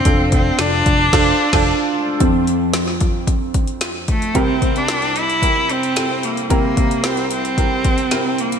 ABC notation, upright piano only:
X:1
M:4/4
L:1/16
Q:1/4=112
K:Cmix
V:1 name="Upright piano"
[DFAc]3 z [DFAd]3 z [DFAc]2 z [DFAca]2 z3 | z16 | [CEGB]3 z [CGB]3 z [CEGB]3 z [CEGA]3 z | [CEGB]3 z [CEGB]3 z [CEGB]3 z [CEGB]3 z |]
V:2 name="Upright piano" clef=bass
z16 | [F,,F,C]2 z12 z2 | [C,,C,]16 | [C,,C,]16 |]